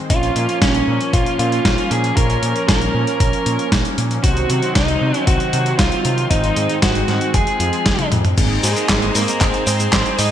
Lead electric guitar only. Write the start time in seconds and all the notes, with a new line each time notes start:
0.10 F4
0.62 C#4
1.13 F4
1.39 F4
1.91 G#4
2.17 A#4
2.68 A#4
3.20 A#4
4.24 F#4
4.75 D#4
5.27 F#4
5.79 F4
6.30 D#4
6.82 F#4
7.34 G#4
8.63 G#3 G#4
9.15 A#3 A#4
9.41 C4 C5
9.67 C4 C5
10.19 D#4 D#5